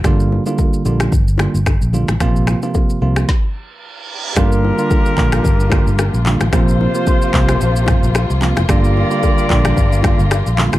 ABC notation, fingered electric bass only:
X:1
M:4/4
L:1/16
Q:"Swing 16ths" 1/4=111
K:Gm
V:1 name="Fingered electric bass" clef=bass
G,,,3 z3 B,,,2 G,,,3 G,,,2 B,,,2 A,,, | B,,,3 z3 C,,2 z8 | G,,,3 z3 B,,,2 G,,,3 G,,,2 B,,,2 A,,, | B,,,3 z3 C,,2 B,,,3 B,,,2 C,,2 F,,, |
G,,,3 z3 B,,,2 G,,,3 G,,,2 B,,,2 A,,, |]